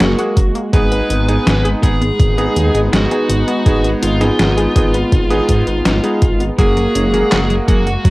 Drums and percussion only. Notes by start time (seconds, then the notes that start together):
0.00 snare, closed hi-hat
0.18 closed hi-hat
0.37 kick, closed hi-hat
0.55 closed hi-hat
0.73 kick, closed hi-hat
0.92 closed hi-hat
1.10 closed hi-hat
1.29 closed hi-hat
1.47 snare, closed hi-hat
1.65 closed hi-hat
1.83 kick, closed hi-hat
2.02 closed hi-hat
2.20 kick, closed hi-hat
2.38 closed hi-hat
2.56 closed hi-hat
2.75 closed hi-hat
2.93 snare, closed hi-hat
3.11 closed hi-hat
3.30 closed hi-hat
3.48 closed hi-hat
3.66 kick, closed hi-hat
3.84 closed hi-hat
4.03 closed hi-hat
4.21 snare, closed hi-hat
4.39 snare, closed hi-hat
4.58 closed hi-hat
4.76 kick, closed hi-hat
4.94 closed hi-hat
5.12 kick, closed hi-hat
5.31 closed hi-hat
5.49 kick, closed hi-hat
5.67 closed hi-hat
5.85 snare, closed hi-hat
6.04 closed hi-hat
6.22 kick, closed hi-hat
6.40 closed hi-hat
6.59 kick, closed hi-hat
6.77 closed hi-hat
6.95 closed hi-hat
7.14 closed hi-hat
7.32 snare, clap, closed hi-hat
7.50 closed hi-hat
7.68 kick, closed hi-hat
7.87 closed hi-hat
8.05 kick, closed hi-hat